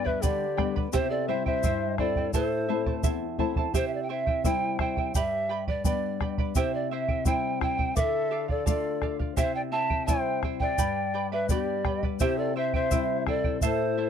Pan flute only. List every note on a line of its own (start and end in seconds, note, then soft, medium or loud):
0.06 0.25 E5 medium
0.23 0.76 D5 medium
0.94 1.12 C5 loud
1.10 1.30 D5 medium
1.28 1.46 E5 medium
1.46 1.95 E5 medium
1.98 2.31 D5 medium
2.34 3.00 C5 medium
3.76 3.87 C5 medium
3.88 3.96 E5 medium
3.94 4.02 D5 medium
4.03 4.12 G5 medium
4.11 4.47 E5 medium
4.45 4.80 G5 loud
4.80 5.13 G5 medium
5.16 5.65 E5 loud
5.69 5.85 D5 medium
5.86 6.35 D5 medium
6.57 6.76 C5 medium
6.74 6.91 D5 medium
6.91 7.28 E5 loud
7.26 7.61 G5 loud
7.62 7.98 G5 loud
7.97 8.49 E5 loud
8.50 8.66 D5 medium
8.68 9.17 D5 medium
9.37 9.54 E5 loud
9.55 9.61 G5 loud
9.72 10.05 A5 loud
10.06 10.40 G5 loud
10.60 11.27 G5 medium
11.32 11.51 E5 medium
11.49 12.02 D5 medium
12.20 12.40 C5 loud
12.38 12.56 D5 medium
12.57 12.73 E5 loud
12.75 13.24 E5 medium
13.28 13.61 D5 medium
13.64 14.10 C5 medium